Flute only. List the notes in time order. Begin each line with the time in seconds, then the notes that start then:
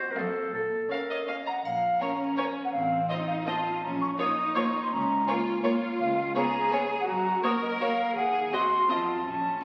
1.11 C#5
1.28 D#5
1.47 F#5
1.64 F5
2.01 A#5
2.37 G#5
2.64 F#5
2.72 F5
3.08 D#5
3.27 F5
3.46 A5
3.83 A#5
4.01 C#6
4.19 D#6
4.55 C#6
4.82 C6
4.91 A#5
5.26 G#5
6.00 F5
6.36 A#5
6.73 G#5
7.00 F#5
7.07 A#5
7.43 D#6
7.62 D#5
7.81 F5
8.16 F#5
8.52 C6
8.89 A5
9.26 A5